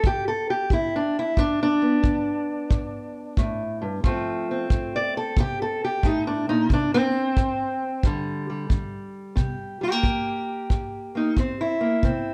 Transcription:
0.00 0.66 D3 medium
0.00 0.93 D4 soft
0.00 kick medium
0.07 0.27 G4 medium
0.28 0.49 A4 medium
0.50 0.71 G4 medium
0.70 1.33 D3 medium
0.70 0.94 E4 medium
0.70 kick medium
0.96 1.16 D4 medium
1.19 1.39 E4 medium
1.37 1.99 G2 medium
1.37 1.60 D4 loud
1.37 kick medium
1.63 3.61 D4 loud
1.82 4.01 B3 soft
2.03 2.65 D3 medium
2.03 kick medium
2.70 3.32 G2 medium
2.70 kick medium
3.37 3.82 A2 medium
3.37 kick medium
3.82 4.03 G2 medium
4.04 4.66 F2 medium
4.04 4.69 F3 medium
4.04 6.68 A3 soft
4.04 4.49 C4 medium
4.04 4.95 F4 medium
4.04 kick medium
4.51 6.05 C4 medium
4.70 5.33 F3 medium
4.70 kick medium
4.96 5.16 D5 medium
5.17 5.38 A4 medium
5.37 5.99 C3 medium
5.37 5.61 G4 loud
5.37 kick medium
5.62 5.83 A4 medium
5.84 6.05 G4 medium
6.03 6.48 A2 medium
6.03 6.27 D#4 loud
6.03 kick medium
6.27 6.49 D4 medium
6.49 6.69 A#2 medium
6.49 6.71 D#4 medium
6.69 7.32 C3 medium
6.69 kick medium
6.74 6.94 D4 medium
6.94 8.04 C4 loud
7.37 7.99 E3 medium
7.37 kick medium
8.03 8.66 G2 medium
8.03 8.68 D3 soft
8.03 8.48 G3 medium
8.03 kick medium
8.50 9.80 G3 soft
8.70 9.32 D3 medium
8.70 kick medium
9.36 9.98 C3 medium
9.36 9.83 G4 soft
9.36 kick medium
9.81 9.92 G3 soft
9.81 11.60 G4 medium
9.92 11.14 A#3 soft
10.03 10.65 E3 medium
10.03 kick medium
10.70 11.32 G2 medium
10.70 kick medium
11.15 11.39 A#3 soft
11.15 11.38 D#4 medium
11.37 11.99 E3 medium
11.37 11.80 C4 medium
11.37 kick medium
11.61 12.34 E4 medium
11.81 12.07 A#3 soft
12.03 12.34 C3 medium
12.03 12.34 C4 medium
12.03 kick medium

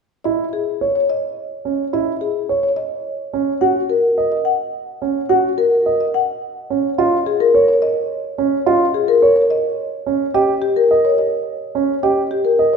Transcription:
0.24 0.43 E4 medium
0.24 0.43 D#5 medium
0.53 0.71 G#4 soft
0.81 0.99 C#5 soft
0.96 1.14 C#5 medium
1.10 1.28 D#5 medium
1.65 1.83 C#4 soft
1.93 2.11 E4 medium
1.93 2.12 D#5 medium
2.21 2.40 G#4 soft
2.49 2.68 C#5 soft
2.63 2.82 C#5 medium
2.76 2.95 D#5 medium
3.33 3.52 C#4 soft
3.61 3.80 F#4 medium
3.61 3.80 F#5 medium
3.90 4.08 A#4 medium
4.18 4.36 D#5 soft
4.32 4.50 D#5 soft
4.45 4.64 F#5 medium
5.02 5.20 C#4 medium
5.29 5.48 F#4 medium
5.29 5.48 F#5 medium
5.58 5.76 A#4 medium
5.86 6.04 D#5 medium
6.00 6.18 D#5 medium
6.14 6.32 F#5 medium
6.70 6.88 C#4 medium
6.98 7.16 F4 medium
6.98 7.16 D#5 medium
7.26 7.44 G#4 medium
7.40 7.58 A#4 medium
7.55 7.72 C#5 medium
7.68 7.86 C#5 medium
7.82 8.00 D#5 medium
8.38 8.56 C#4 medium
8.66 8.85 F4 medium
8.66 8.85 D#5 medium
8.94 9.13 G#4 medium
9.08 9.27 A#4 medium
9.22 9.41 C#5 medium
9.36 9.54 C#5 medium
9.50 9.69 D#5 medium
10.06 10.25 C#4 medium
10.34 10.53 G4 medium
10.34 10.53 D#5 medium
10.62 10.80 G4 medium
10.76 10.95 A#4 medium
10.91 11.09 D#5 medium
11.05 11.23 C#5 medium
11.18 11.37 D#5 medium
11.75 11.93 C#4 medium
12.03 12.21 G4 medium
12.03 12.21 D#5 medium
12.31 12.49 G4 medium
12.45 12.63 A#4 medium
12.59 12.77 D#5 soft
12.73 12.77 C#5 medium

